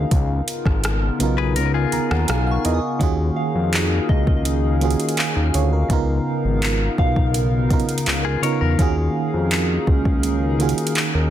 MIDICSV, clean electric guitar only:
0, 0, Header, 1, 2, 480
1, 0, Start_track
1, 0, Key_signature, -6, "minor"
1, 0, Tempo, 722892
1, 76, Time_signature, 4, 2, 24, 8
1, 7504, End_track
2, 0, Start_track
2, 0, Title_t, "Clean electric guitar"
2, 0, Program_c, 0, 27
2, 917, Note_on_c, 0, 71, 78
2, 921, Note_on_c, 0, 68, 66
2, 1031, Note_off_c, 0, 71, 0
2, 1033, Note_off_c, 0, 68, 0
2, 1035, Note_on_c, 0, 70, 86
2, 1150, Note_off_c, 0, 70, 0
2, 1157, Note_on_c, 0, 68, 79
2, 1161, Note_on_c, 0, 65, 65
2, 1850, Note_off_c, 0, 68, 0
2, 1852, Note_off_c, 0, 65, 0
2, 5477, Note_on_c, 0, 68, 77
2, 5480, Note_on_c, 0, 65, 65
2, 5591, Note_off_c, 0, 68, 0
2, 5593, Note_off_c, 0, 65, 0
2, 5596, Note_on_c, 0, 73, 86
2, 5601, Note_on_c, 0, 70, 78
2, 5709, Note_off_c, 0, 70, 0
2, 5710, Note_off_c, 0, 73, 0
2, 5717, Note_on_c, 0, 70, 76
2, 5945, Note_off_c, 0, 70, 0
2, 7504, End_track
0, 0, End_of_file